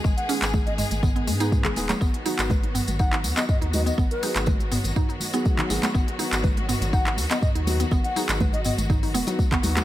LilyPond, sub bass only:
\new Staff \with { instrumentName = "Sub bass" } { \clef bass \time 4/4 \key b \major \tempo 4 = 122 gis,,16 r8 gis,,8. r16 gis,,8. gis,8. fis,,16 dis,,16 r16 | gis,,16 r8 gis,,8. r16 gis,,8. dis,16 r8 dis,8 r16 | gis,,16 r8 gis,,8. r16 gis,,16 r4. gis,,16 r16 | gis,,16 r8 gis,,8. r16 gis,,8. dis,16 r8 dis,8 r16 |
gis,,16 r8 gis,,8. r16 gis,,8. dis,,16 r8 gis,,16 dis,16 r16 | }